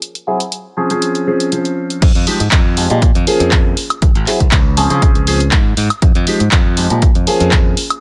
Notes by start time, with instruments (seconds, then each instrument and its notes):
0.02 closed hi-hat
0.15 closed hi-hat
0.27 grand piano F#3 C4 E4 G#4
0.40 closed hi-hat
0.52 closed hi-hat
0.77 grand piano F3 C4 C#4 G#4
0.90 grand piano F3 C4 C#4 G#4, closed hi-hat
1.02 closed hi-hat
1.15 closed hi-hat
1.27 grand piano F3 C4 C#4 G#4
1.40 closed hi-hat
1.52 grand piano F3 C4 C#4 C5, closed hi-hat
1.65 closed hi-hat
1.90 closed hi-hat
2.02 fingered electric bass F2, kick, closed hi-hat, crash
2.15 fingered electric bass F2, closed hi-hat
2.27 grand piano F3 G#3 D#4 G4, open hi-hat
2.40 fingered electric bass G#2, closed hi-hat
2.51 fingered electric bass F2, kick, clap, closed hi-hat
2.77 grand piano F3 G#3 D#4 G4, open hi-hat
2.90 fingered electric bass A#2, grand piano F3 G#3 D#4 G4, closed hi-hat
3.02 kick, closed hi-hat
3.15 fingered electric bass F2, closed hi-hat
3.27 grand piano F3 A#3 C#4 G#4, open hi-hat
3.40 fingered electric bass F2, closed hi-hat
3.51 kick, clap, closed hi-hat
3.77 open hi-hat
3.90 closed hi-hat, high woodblock
4.02 fingered electric bass G#1, kick, closed hi-hat
4.15 fingered electric bass G#1, closed hi-hat
4.27 grand piano F#3 C4 E4 G#4, clap, open hi-hat
4.40 fingered electric bass C2, kick, closed hi-hat
4.52 fingered electric bass C#2, kick, clap, closed hi-hat
4.77 grand piano F3 C4 C#4 G#4, open hi-hat
4.90 fingered electric bass C#3, grand piano F3 C4 C#4 G#4, closed hi-hat
5.02 kick, closed hi-hat
5.15 fingered electric bass C#2, closed hi-hat
5.27 grand piano F3 C4 C#4 G#4, open hi-hat
5.40 closed hi-hat
5.52 fingered electric bass G#2, kick, clap, closed hi-hat
5.77 fingered electric bass G#2, open hi-hat
5.90 closed hi-hat, high woodblock
6.02 fingered electric bass F2, kick, closed hi-hat
6.15 fingered electric bass F2, closed hi-hat
6.27 grand piano F3 G#3 D#4 G4, open hi-hat
6.40 fingered electric bass G#2, closed hi-hat
6.51 fingered electric bass F2, kick, clap, closed hi-hat
6.77 grand piano F3 G#3 D#4 G4, open hi-hat
6.90 fingered electric bass A#2, grand piano F3 G#3 D#4 G4, closed hi-hat
7.02 kick, closed hi-hat
7.15 fingered electric bass F2, closed hi-hat
7.27 grand piano F3 A#3 C#4 G#4, open hi-hat
7.40 fingered electric bass F2, closed hi-hat
7.52 kick, clap, closed hi-hat
7.77 open hi-hat
7.90 closed hi-hat, high woodblock